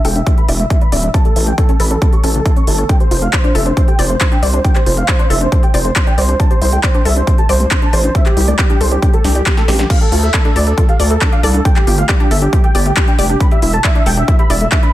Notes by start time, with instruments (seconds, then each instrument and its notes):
0.05 analog synth bass E1, synth arpeggio sound A4, supersaw synth G5, open hi-hat
0.16 synth arpeggio sound D4, supersaw synth E5, closed hi-hat
0.27 synth arpeggio sound D4, supersaw synth E5, kick, closed hi-hat
0.37 synth arpeggio sound G4, supersaw synth B5, closed hi-hat
0.48 analog synth bass E1, synth arpeggio sound D5, supersaw synth E5, open hi-hat
0.59 synth arpeggio sound A3, supersaw synth E5, closed hi-hat
0.70 synth arpeggio sound D4, supersaw synth E5, kick, closed hi-hat
0.81 synth arpeggio sound D4, supersaw synth B5, closed hi-hat
0.92 analog synth bass D1, synth arpeggio sound D5, supersaw synth E5, open hi-hat
1.03 synth arpeggio sound D4, supersaw synth E5, closed hi-hat
1.14 synth arpeggio sound C#4, supersaw synth A5, kick, closed hi-hat
1.25 synth arpeggio sound G4, supersaw synth A4, closed hi-hat
1.36 analog synth bass A1, synth arpeggio sound E4, supersaw synth A4, open hi-hat
1.47 synth arpeggio sound A3, supersaw synth G5, closed hi-hat
1.58 supersaw synth A4, synth arpeggio sound C#5, kick, closed hi-hat
1.69 synth arpeggio sound C#4, supersaw synth A4, closed hi-hat
1.80 analog synth bass A1, synth arpeggio sound A4, supersaw synth B5, open hi-hat
1.91 synth arpeggio sound C#4, supersaw synth A4, closed hi-hat
2.02 synth arpeggio sound C#4, supersaw synth A4, kick, closed hi-hat
2.13 synth arpeggio sound G4, supersaw synth C#6, closed hi-hat
2.24 analog synth bass A1, synth arpeggio sound C#4, supersaw synth A4, open hi-hat
2.35 synth arpeggio sound C#3, supersaw synth A4, closed hi-hat
2.46 synth arpeggio sound E4, supersaw synth A4, kick, closed hi-hat
2.56 synth arpeggio sound C#4, supersaw synth C#6, closed hi-hat
2.67 analog synth bass G1, synth arpeggio sound E4, supersaw synth A4, open hi-hat
2.78 supersaw synth A4, synth arpeggio sound C#5, closed hi-hat
2.89 synth arpeggio sound D4, supersaw synth G5, kick, closed hi-hat
3.00 synth arpeggio sound G4, supersaw synth C5, closed hi-hat
3.11 analog synth bass F1, synth arpeggio sound F4, supersaw synth C5, open hi-hat
3.22 synth arpeggio sound A3, supersaw synth F5, closed hi-hat
3.33 supersaw synth C5, synth arpeggio sound D5, kick, clap, closed hi-hat
3.44 synth arpeggio sound D4, supersaw synth C5, closed hi-hat
3.55 analog synth bass F1, synth arpeggio sound A4, supersaw synth E5, open hi-hat
3.66 synth arpeggio sound D4, supersaw synth C5, closed hi-hat
3.77 synth arpeggio sound D4, supersaw synth C5, kick, closed hi-hat
3.88 synth arpeggio sound G4, supersaw synth G5, closed hi-hat
3.99 analog synth bass F1, supersaw synth C5, synth arpeggio sound D5, open hi-hat
4.10 synth arpeggio sound A3, supersaw synth C5, closed hi-hat
4.21 synth arpeggio sound D4, supersaw synth C5, kick, clap, closed hi-hat
4.32 synth arpeggio sound D4, supersaw synth G5, closed hi-hat
4.43 analog synth bass C2, supersaw synth C5, synth arpeggio sound D5, open hi-hat
4.54 synth arpeggio sound D4, supersaw synth C5, closed hi-hat
4.64 synth arpeggio sound D4, supersaw synth G5, kick, closed hi-hat
4.75 synth arpeggio sound G4, supersaw synth C5, clap, closed hi-hat
4.86 analog synth bass F1, synth arpeggio sound F4, supersaw synth C5, open hi-hat
4.97 synth arpeggio sound A3, supersaw synth F5, closed hi-hat
5.08 supersaw synth C5, synth arpeggio sound D5, kick, clap, closed hi-hat
5.19 synth arpeggio sound D4, supersaw synth C5, closed hi-hat
5.30 analog synth bass F1, synth arpeggio sound A4, supersaw synth E5, open hi-hat
5.41 synth arpeggio sound D4, supersaw synth C5, closed hi-hat
5.52 synth arpeggio sound D4, supersaw synth C5, kick, closed hi-hat
5.63 synth arpeggio sound G4, supersaw synth G5, closed hi-hat
5.74 analog synth bass F1, supersaw synth C5, synth arpeggio sound D5, open hi-hat
5.85 synth arpeggio sound A3, supersaw synth C5, closed hi-hat
5.96 synth arpeggio sound D4, supersaw synth C5, kick, clap, closed hi-hat
6.07 synth arpeggio sound D4, supersaw synth G5, closed hi-hat
6.18 analog synth bass C2, supersaw synth C5, synth arpeggio sound D5, open hi-hat
6.29 synth arpeggio sound D4, supersaw synth C5, closed hi-hat
6.40 synth arpeggio sound D4, supersaw synth A5, kick, closed hi-hat
6.51 synth arpeggio sound G4, supersaw synth C5, closed hi-hat
6.62 analog synth bass C2, synth arpeggio sound E4, supersaw synth C5, open hi-hat
6.72 synth arpeggio sound A3, supersaw synth G5, closed hi-hat
6.83 supersaw synth C5, synth arpeggio sound D5, kick, clap, closed hi-hat
6.94 synth arpeggio sound D4, supersaw synth C5, closed hi-hat
7.05 analog synth bass C2, synth arpeggio sound A4, supersaw synth E5, open hi-hat
7.16 synth arpeggio sound D4, supersaw synth C5, closed hi-hat
7.27 synth arpeggio sound D4, supersaw synth C5, kick, closed hi-hat
7.38 synth arpeggio sound G4, supersaw synth A5, closed hi-hat
7.49 analog synth bass C2, supersaw synth C5, synth arpeggio sound D5, open hi-hat
7.60 synth arpeggio sound A3, supersaw synth C5, closed hi-hat
7.71 synth arpeggio sound D4, supersaw synth C5, kick, clap, closed hi-hat
7.82 synth arpeggio sound D4, supersaw synth A5, closed hi-hat
7.93 analog synth bass A1, supersaw synth C5, synth arpeggio sound D5, open hi-hat
8.04 synth arpeggio sound D4, supersaw synth C5, closed hi-hat
8.15 synth arpeggio sound D4, supersaw synth E5, kick, closed hi-hat
8.26 synth arpeggio sound G4, supersaw synth G4, clap, closed hi-hat
8.37 analog synth bass C2, synth arpeggio sound E4, supersaw synth G4, open hi-hat
8.48 synth arpeggio sound A3, supersaw synth D5, closed hi-hat
8.59 supersaw synth G4, synth arpeggio sound D5, kick, clap, closed hi-hat
8.70 synth arpeggio sound D4, supersaw synth G4, closed hi-hat
8.81 analog synth bass C2, synth arpeggio sound A4, supersaw synth C5, open hi-hat
8.92 synth arpeggio sound D4, supersaw synth G4, closed hi-hat
9.02 synth arpeggio sound D4, supersaw synth G4, kick, closed hi-hat
9.13 synth arpeggio sound G4, supersaw synth A4, closed hi-hat
9.24 analog synth bass C2, synth arpeggio sound D4, supersaw synth G4, snare, open hi-hat
9.35 supersaw synth G4, synth arpeggio sound D5, closed hi-hat
9.46 synth arpeggio sound C4, supersaw synth G4, kick, snare, clap, closed hi-hat
9.57 synth arpeggio sound G4, supersaw synth A4, snare, closed hi-hat
9.68 analog synth bass A1, synth arpeggio sound D4, supersaw synth G4, snare, open hi-hat
9.79 synth arpeggio sound D4, supersaw synth G4, snare, closed hi-hat
9.90 synth arpeggio sound D4, supersaw synth F5, kick, closed hi-hat, crash
10.01 synth arpeggio sound G4, supersaw synth A4, closed hi-hat
10.12 analog synth bass D2, synth arpeggio sound F4, supersaw synth A4, open hi-hat
10.23 synth arpeggio sound A3, supersaw synth E5, closed hi-hat
10.34 supersaw synth A4, synth arpeggio sound D5, kick, clap, closed hi-hat
10.45 synth arpeggio sound D4, supersaw synth A4, closed hi-hat
10.56 analog synth bass D2, synth arpeggio sound A4, supersaw synth D5, open hi-hat
10.67 synth arpeggio sound D4, supersaw synth A4, closed hi-hat
10.78 synth arpeggio sound F4, supersaw synth A4, kick, closed hi-hat
10.89 synth arpeggio sound G4, supersaw synth F5, closed hi-hat
11.00 analog synth bass D2, supersaw synth A4, synth arpeggio sound D5, open hi-hat
11.10 synth arpeggio sound A3, supersaw synth A4, closed hi-hat
11.21 synth arpeggio sound D4, supersaw synth A4, kick, clap, closed hi-hat
11.32 synth arpeggio sound D4, supersaw synth F5, closed hi-hat
11.43 analog synth bass C2, supersaw synth A4, synth arpeggio sound D5, open hi-hat
11.54 synth arpeggio sound D4, supersaw synth A4, closed hi-hat
11.65 synth arpeggio sound D4, supersaw synth G5, kick, closed hi-hat
11.76 supersaw synth G4, synth arpeggio sound G4, clap, closed hi-hat
11.87 analog synth bass G1, synth arpeggio sound F4, supersaw synth G4, open hi-hat
11.98 synth arpeggio sound A3, supersaw synth F5, closed hi-hat
12.09 supersaw synth G4, synth arpeggio sound D5, kick, clap, closed hi-hat
12.20 synth arpeggio sound D4, supersaw synth G4, closed hi-hat
12.31 analog synth bass G1, synth arpeggio sound A4, supersaw synth E5, open hi-hat
12.42 synth arpeggio sound D4, supersaw synth G4, closed hi-hat
12.53 synth arpeggio sound F4, supersaw synth G4, kick, closed hi-hat
12.64 synth arpeggio sound G4, supersaw synth G5, closed hi-hat
12.75 analog synth bass G1, supersaw synth G4, synth arpeggio sound D5, open hi-hat
12.86 synth arpeggio sound A3, supersaw synth G4, closed hi-hat
12.97 synth arpeggio sound D4, supersaw synth G4, kick, clap, closed hi-hat
13.08 synth arpeggio sound D4, supersaw synth G5, closed hi-hat
13.19 analog synth bass F1, supersaw synth G4, synth arpeggio sound D5, open hi-hat
13.29 synth arpeggio sound D4, supersaw synth G4, closed hi-hat
13.40 synth arpeggio sound D4, supersaw synth B5, kick, closed hi-hat
13.51 synth arpeggio sound G4, supersaw synth E5, closed hi-hat
13.62 analog synth bass E1, synth arpeggio sound E4, supersaw synth E5, open hi-hat
13.73 synth arpeggio sound A3, supersaw synth A5, closed hi-hat
13.84 synth arpeggio sound D5, supersaw synth E5, kick, clap, closed hi-hat
13.95 synth arpeggio sound D4, supersaw synth E5, closed hi-hat
14.06 analog synth bass E1, synth arpeggio sound A4, supersaw synth G5, open hi-hat
14.17 synth arpeggio sound D4, supersaw synth E5, closed hi-hat
14.28 synth arpeggio sound E4, supersaw synth E5, kick, closed hi-hat
14.39 synth arpeggio sound G4, supersaw synth B5, closed hi-hat
14.50 analog synth bass E1, synth arpeggio sound D5, supersaw synth E5, open hi-hat
14.61 synth arpeggio sound A3, supersaw synth E5, closed hi-hat
14.72 synth arpeggio sound D4, supersaw synth E5, kick, clap, closed hi-hat
14.83 synth arpeggio sound D4, supersaw synth B5, closed hi-hat